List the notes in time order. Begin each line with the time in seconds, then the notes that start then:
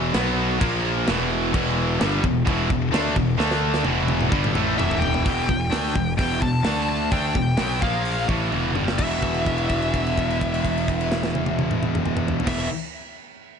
Already playing: E1 E2 B2 E3
0.13 B1 B2 F#3 B3, snare, crash
0.60 A#1 A#2 F3 A#3, kick, crash
1.06 E1 E2 B2 E3, snare, crash
1.52 E1 E2 B2 E3, kick, crash
1.99 G1 G2 D3 G3, snare, crash
2.22 E1 E2 B2, kick
2.45 E1 E2 B2 E3, kick, crash
2.67 E1 E2 B2, kick
2.91 D2 D3 A3 D4, snare, crash
3.15 E1 E2 B2, kick
3.38 D2 D3 A3 D4, snare
3.51 snare
3.74 snare
3.83 E1 E2 B2 E3, high tom
4.08 high tom
4.21 mid tom
4.28 G2 D3 G3, kick
4.33 G1
4.44 mid tom
4.52 A1 A2 E3 A3, mid tom
4.76 E1 E2 B2 E3 E5, mid tom
4.91 floor tom
4.99 G5, floor tom
5.14 floor tom
5.23 E1 E2 B2 E3, kick, open hi-hat
5.46 E1 E2 B2, kick
5.70 D2 D3 A3 D4, snare, open hi-hat
5.94 E1 E2 B2, kick
6.17 E1 E2 B2 E3 G5, kick, open hi-hat
6.40 E1 E2 B2 A5, kick
6.63 D2 D3 A3 D4, snare, open hi-hat
6.89 A5
7.10 D2 D3 A3 D4 G5, kick, open hi-hat
7.34 E1 E2 B2, kick
7.57 B1 B2 F#3 B3, snare, open hi-hat
7.79 A#1 A#2 F3 A#3 F5, kick
8.05 open hi-hat
8.27 A1 A2 E3 A3, kick
8.50 E1 E2 B2 E3, high tom
8.73 G1 G2 D3 G3, mid tom
8.88 snare
8.96 E1 E2 B2 E3 E5, kick, crash
9.22 kick, crash
9.34 crash
9.46 kick, crash
9.58 crash
9.69 kick, crash
9.82 crash
9.94 kick, crash
10.07 crash
10.18 kick, crash
10.30 crash
10.41 kick, crash
10.54 crash
10.65 kick, crash
10.78 crash
10.88 kick, crash
11.01 crash
11.12 snare
11.23 snare
11.35 high tom
11.46 high tom
11.59 high tom
11.71 mid tom
11.83 mid tom
11.95 mid tom
12.06 mid tom
12.17 mid tom
12.28 floor tom
12.40 E2, floor tom
12.46 E1 B2 E3 E5, kick, snare, crash